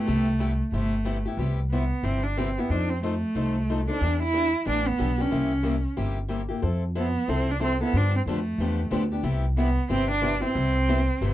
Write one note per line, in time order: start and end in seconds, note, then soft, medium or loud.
0.00 0.57 A3 loud
0.06 0.60 C2 medium
0.06 0.27 C3 medium
0.06 0.27 G3 medium
0.06 0.27 B3 medium
0.06 0.28 E4 medium
0.06 0.28 G4 medium
0.39 0.51 C3 medium
0.39 0.51 G3 medium
0.39 0.50 B3 medium
0.39 0.51 E4 medium
0.39 0.51 G4 medium
0.72 1.25 G1 medium
0.72 0.93 C3 medium
0.72 0.93 G3 medium
0.72 1.22 A3 medium
0.72 0.93 B3 medium
0.72 0.94 E4 medium
0.72 0.94 G4 medium
1.05 1.16 C3 medium
1.05 1.16 G3 medium
1.05 1.17 B3 medium
1.05 1.17 E4 medium
1.05 1.17 G4 medium
1.25 1.37 B3 soft
1.25 1.38 E4 medium
1.25 1.38 G4 medium
1.37 1.90 C2 medium
1.37 1.59 C3 medium
1.37 1.59 G3 medium
1.37 1.59 B3 medium
1.37 1.59 E4 medium
1.37 1.59 G4 medium
1.71 1.83 C3 medium
1.71 1.83 G3 medium
1.71 2.06 B3 medium
1.71 1.83 B3 medium
1.71 1.83 E4 medium
1.71 1.83 G4 medium
2.03 2.56 G1 medium
2.03 2.24 C3 medium
2.03 2.24 G3 medium
2.03 2.24 B3 medium
2.03 2.25 C4 medium
2.03 2.24 E4 medium
2.03 2.25 G4 medium
2.23 2.40 D4 medium
2.37 2.48 C3 medium
2.37 2.48 G3 medium
2.37 2.48 B3 medium
2.37 2.61 C4 medium
2.37 2.48 E4 medium
2.37 2.49 G4 medium
2.58 2.72 B3 medium
2.58 2.71 B3 soft
2.58 2.70 E4 soft
2.58 2.70 G4 soft
2.70 3.22 F2 medium
2.70 2.91 F3 medium
2.70 2.91 C4 medium
2.70 2.91 D4 medium
2.70 2.91 D#4 medium
2.70 2.91 A4 medium
2.90 3.02 C4 medium
3.03 3.14 F3 medium
3.03 3.84 A3 medium
3.03 3.14 C4 medium
3.03 3.14 D#4 medium
3.03 3.14 A4 medium
3.35 3.88 C2 medium
3.35 3.55 F3 medium
3.35 3.56 C4 medium
3.35 3.56 D#4 medium
3.35 3.56 A4 medium
3.70 3.80 F3 medium
3.70 3.80 C4 medium
3.70 3.80 D#4 medium
3.70 3.80 A4 medium
3.88 4.01 C4 soft
3.88 4.19 D4 medium
3.88 4.01 D#4 soft
3.88 4.00 A4 medium
4.01 4.53 E2 medium
4.01 4.21 E3 medium
4.01 4.21 B3 medium
4.01 4.22 D4 medium
4.01 4.22 G4 medium
4.23 4.64 E4 loud
4.34 4.44 E3 medium
4.34 4.44 B3 medium
4.34 4.45 D4 loud
4.34 4.45 G4 loud
4.65 4.94 A1 medium
4.65 4.86 E3 medium
4.65 4.86 B3 medium
4.65 4.87 D4 medium
4.65 4.86 G4 medium
4.69 4.89 D4 medium
4.88 5.23 B3 medium
4.98 5.27 B1 medium
4.98 5.09 E3 medium
4.98 5.09 B3 medium
4.98 5.10 D4 medium
4.98 5.10 G4 medium
5.18 5.31 B3 soft
5.18 5.85 C#4 medium
5.18 5.31 D4 medium
5.18 5.31 G4 medium
5.31 5.85 C2 medium
5.31 5.52 C3 medium
5.31 5.52 G3 medium
5.31 5.52 A#3 medium
5.31 5.52 E4 medium
5.31 5.52 G4 medium
5.63 5.75 C3 medium
5.63 5.75 G3 medium
5.63 5.75 A#3 medium
5.63 5.75 E4 medium
5.63 5.75 G4 medium
5.97 6.50 G1 medium
5.97 6.17 C3 medium
5.97 6.17 G3 medium
5.97 6.17 A#3 medium
5.97 6.17 E4 medium
5.97 6.17 G4 medium
6.28 6.40 C3 medium
6.28 6.40 G3 medium
6.28 6.40 A#3 medium
6.28 6.41 E4 medium
6.28 6.41 G4 medium
6.48 6.62 A#3 soft
6.48 6.61 E4 soft
6.48 6.61 G4 medium
6.62 7.15 F2 medium
6.62 6.83 F3 medium
6.62 6.83 C4 medium
6.62 6.83 E4 medium
6.62 6.83 A4 medium
6.95 7.06 F3 medium
6.95 7.31 B3 medium
6.95 7.06 C4 medium
6.95 7.06 E4 medium
6.95 7.07 A4 medium
7.28 7.80 C2 medium
7.28 7.48 F3 medium
7.28 7.48 C4 medium
7.28 7.53 C4 medium
7.28 7.49 E4 medium
7.28 7.49 A4 medium
7.51 7.62 D4 medium
7.60 7.71 F3 medium
7.60 7.72 C4 medium
7.60 7.81 C4 loud
7.60 7.72 E4 medium
7.60 7.72 A4 medium
7.81 7.99 B3 medium
7.81 7.94 C4 soft
7.81 7.94 E4 soft
7.81 7.93 A4 medium
7.93 8.20 G2 medium
7.93 8.14 D3 medium
7.93 8.14 F3 medium
7.93 8.15 B3 medium
7.93 8.15 D4 medium
7.93 8.15 D4 loud
7.93 8.15 G4 medium
8.17 8.22 C4 medium
8.26 8.54 F2 medium
8.26 8.38 D3 medium
8.26 8.38 F3 medium
8.26 9.09 A3 medium
8.26 8.38 B3 medium
8.26 8.38 D4 medium
8.26 8.38 G4 loud
8.58 8.86 E2 medium
8.58 8.80 D3 medium
8.58 8.80 F3 medium
8.58 8.80 B3 medium
8.58 8.81 D4 medium
8.58 8.80 G4 medium
8.91 9.19 D2 medium
8.91 9.02 D3 medium
8.91 9.02 F3 medium
8.91 9.03 B3 medium
8.91 9.03 D4 medium
8.91 9.03 G4 medium
9.12 9.23 B3 soft
9.12 9.24 D4 soft
9.12 9.23 G4 medium
9.23 9.76 C2 loud
9.23 9.44 C3 medium
9.23 9.44 G3 medium
9.23 9.44 B3 medium
9.23 9.45 E4 medium
9.23 9.45 G4 medium
9.57 9.68 C3 medium
9.57 9.69 G3 medium
9.57 9.88 B3 medium
9.57 9.68 B3 medium
9.57 9.68 E4 loud
9.57 9.69 G4 loud
9.89 10.42 G1 medium
9.89 10.10 C3 medium
9.89 10.10 G3 medium
9.89 10.10 B3 medium
9.89 10.09 C4 loud
9.89 10.10 E4 medium
9.89 10.10 G4 medium
10.11 10.41 D4 loud
10.21 10.32 C3 medium
10.21 10.33 G3 loud
10.21 10.33 B3 medium
10.21 10.33 E4 medium
10.21 10.34 G4 medium
10.40 10.54 B3 soft
10.40 10.54 E4 medium
10.40 10.54 G4 medium
10.45 11.34 C4 loud
10.55 11.07 C2 medium
10.55 10.75 C3 medium
10.55 10.75 G3 medium
10.55 10.76 B3 medium
10.55 10.76 E4 medium
10.55 10.76 G4 medium
10.88 10.99 C3 medium
10.88 10.99 G3 medium
10.88 10.99 B3 loud
10.88 10.99 E4 loud
10.88 11.00 G4 loud
11.21 11.34 G1 medium
11.21 11.34 C3 medium
11.21 11.34 G3 medium
11.21 11.34 B3 medium
11.21 11.34 E4 medium
11.21 11.34 G4 medium